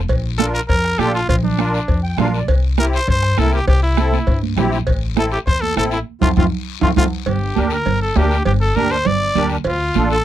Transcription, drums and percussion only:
0.08 bombo low, cowbell, high conga, long guiro
0.39 bombo rim, high conga, short guiro
0.54 short guiro
0.69 bombo low, cowbell, high conga, long guiro
0.85 bombo rim
0.99 bombo rim, high conga, short guiro
1.14 short guiro
1.28 bombo low, cowbell, high conga, long guiro
1.43 low conga
1.59 bombo rim, high conga, short guiro
1.74 short guiro
1.88 bombo low, cowbell, high conga, long guiro
2.18 bombo rim, high conga, low conga, low timbale, short guiro
2.34 short guiro
2.48 bombo low, cowbell, high conga, long guiro
2.78 bombo rim, high conga, short guiro
2.93 short guiro
3.08 bombo low, cowbell, high conga, long guiro
3.23 bombo rim
3.38 bombo rim, high conga, short guiro
3.53 short guiro
3.68 bombo low, cowbell, long guiro
3.97 bombo rim, high conga, short guiro
4.12 high conga, short guiro
4.27 bombo low, cowbell, high conga, long guiro
4.43 high conga
4.57 bombo rim, high conga, low conga, low timbale, short guiro
4.72 short guiro
4.87 bombo low, cowbell, long guiro
5.17 bombo rim, high conga, short guiro
5.32 short guiro
5.47 bombo low, cowbell, high conga, long guiro
5.63 high conga
5.77 bombo rim, high conga, short guiro
5.91 short guiro
6.21 bombo low, low conga, high timbale, long guiro
6.37 bombo low, low conga, high timbale, long guiro
6.81 bombo low, low conga, high timbale
6.96 bombo low, low conga, high timbale, long guiro
7.26 cowbell, high conga, low conga, long guiro
7.56 high conga, short guiro
7.70 short guiro
7.86 cowbell, high conga, low conga, long guiro
8.16 high conga, low timbale, short guiro
8.31 short guiro
8.45 cowbell, high conga, low conga, long guiro
8.75 high conga, short guiro
8.90 short guiro
9.05 cowbell, high conga, low conga, long guiro
9.35 high conga, low conga, short guiro
9.50 short guiro
9.64 cowbell, high conga, long guiro
9.94 high conga, short guiro
10.10 short guiro

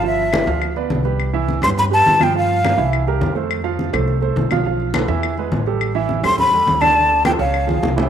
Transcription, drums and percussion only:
0.05 high conga
0.20 high conga
0.33 high conga, claves
0.48 high conga
0.62 high conga, claves
0.76 high conga
0.90 high conga
1.05 high conga
1.20 high conga, claves
1.34 high conga
1.49 high conga
1.63 high conga, low conga, claves
1.78 high conga, low conga
1.92 high conga
2.06 high conga
2.21 high conga, claves
2.36 high conga
2.50 high conga
2.65 high conga, claves
2.79 high conga
2.93 high conga, claves
3.08 high conga
3.22 high conga
3.36 high conga
3.51 high conga, claves
3.65 high conga
3.79 high conga
3.94 high conga, low conga, claves
4.08 high conga
4.22 high conga
4.37 high conga
4.51 high conga, claves
4.65 high conga
4.80 high conga
4.94 high conga, claves
5.08 high conga
5.23 high conga, claves
5.38 high conga
5.52 high conga
5.66 high conga
5.81 high conga, claves
5.95 high conga
6.09 high conga
6.23 high conga, low conga, claves
6.38 high conga, low conga
6.53 high conga
6.68 high conga
6.82 high conga, claves
6.97 high conga
7.11 high conga
7.25 high conga, claves
7.40 high conga
7.54 high conga, claves
7.69 high conga
7.83 high conga
7.98 low conga

